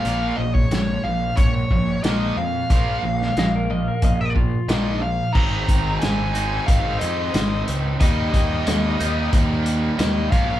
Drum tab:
CC |----------------|----------------|x---------------|----------------|
HH |x---x---x---x---|x---x---x---x---|--x-x-x-x-x-x-x-|x-x-x-x-x-x-x-x-|
SD |----o-------o---|---oo-------o---|----o-------o---|----o-------o---|
BD |---o----o-o-----|o-------o-o-----|o-o-----o-------|o-o-----o-----o-|